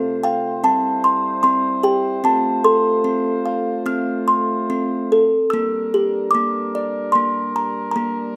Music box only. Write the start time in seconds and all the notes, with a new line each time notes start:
Already playing: C4 A4 F5
0.24 F5 G5
0.64 C4 A5
1.04 C6
1.43 C4 C6
1.83 G4 G5
2.24 C4 A5
2.64 A4 C6
3.04 C4
3.46 F5
3.86 C4 F6
4.28 C6
4.70 C4
5.12 A4
5.50 A#3 E6
5.94 G4
6.31 D6
6.35 A#3
6.75 D5
7.12 A#3 C6
7.56 A#5
7.91 A#5
7.96 A#3